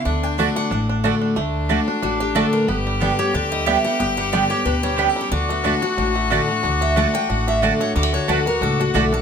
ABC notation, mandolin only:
X:1
M:4/4
L:1/8
Q:"Swing" 1/4=182
K:D
V:1 name="Mandolin"
z2 [A,Fda] z3 [A,Fda] z | z2 [A,Fda] z3 [A,Fda] z | z2 [B,Gdg] z3 [B,Gdg] z | z2 [B,Gdg] z3 [B,Gdg] z |
z2 [A,Fda] z3 [A,Fda] z | z2 [A,Fda] z3 [A,Fda] z | z2 [A,Fda] z3 [A,Fda] z |]